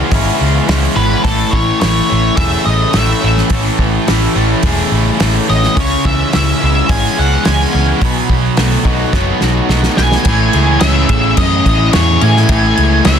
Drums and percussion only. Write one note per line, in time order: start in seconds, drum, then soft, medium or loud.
0.11 kick loud
0.11 open hi-hat medium
0.69 snare loud
0.69 open hi-hat medium
1.24 kick loud
1.24 open hi-hat medium
1.53 kick medium
1.81 snare loud
1.81 open hi-hat soft
2.37 kick loud
2.37 open hi-hat medium
2.93 snare loud
2.93 open hi-hat medium
3.37 snare soft
3.50 kick loud
3.50 open hi-hat medium
3.79 kick medium
4.08 snare loud
4.08 open hi-hat medium
4.63 kick loud
4.63 open hi-hat medium
5.20 snare loud
5.20 open hi-hat medium
5.63 snare soft
5.77 kick loud
5.77 open hi-hat medium
6.05 kick medium
6.33 snare loud
6.33 open hi-hat medium
6.89 kick loud
6.89 open hi-hat medium
7.45 snare loud
7.45 open hi-hat soft
8.01 kick loud
8.01 open hi-hat medium
8.30 kick medium
8.57 snare loud
8.57 open hi-hat soft
8.85 kick medium
9.13 kick loud
9.13 snare medium
9.41 snare medium
9.69 snare medium
9.83 snare medium
9.97 snare medium
10.12 snare medium
10.25 kick loud
10.25 crash medium
10.53 crash medium
10.80 snare loud
10.80 crash medium
11.09 kick medium
11.09 crash medium
11.37 kick loud
11.37 crash loud
11.66 kick medium
11.66 crash medium
11.93 snare loud
11.93 crash medium
12.21 crash medium
12.36 snare soft
12.49 kick loud
12.49 crash medium
12.77 crash medium
13.05 snare loud
13.05 crash medium